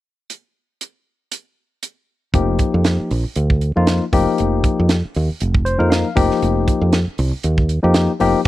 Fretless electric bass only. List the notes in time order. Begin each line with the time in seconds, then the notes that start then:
2.34 F1
2.74 F2
3.00 muted fretless electric bass stroke
3.11 A#1
3.25 muted fretless electric bass stroke
3.36 D2
3.77 F2
4.13 F1
4.40 F1
4.80 F2
5.05 muted fretless electric bass stroke
5.16 D#2
5.30 muted fretless electric bass stroke
5.41 F1
5.80 F2
6.17 F1
6.42 F1
6.81 F2
7.07 muted fretless electric bass stroke
7.19 C2
7.33 muted fretless electric bass stroke
7.44 D#2
7.84 F2
8.21 F1